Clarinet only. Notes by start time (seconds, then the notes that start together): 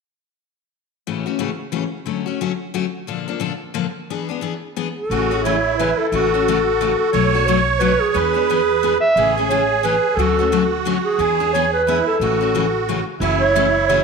4.98 A4
5.45 C#5
5.78 B4
5.98 A4
6.98 A4
7.46 C#5
7.79 B4
8.01 G#4
9.00 E5
9.48 C#5
9.84 B4
10.15 A4
11.04 G#4
11.53 C#5
11.73 B4
12.07 A4
13.41 C#5
13.87 C#5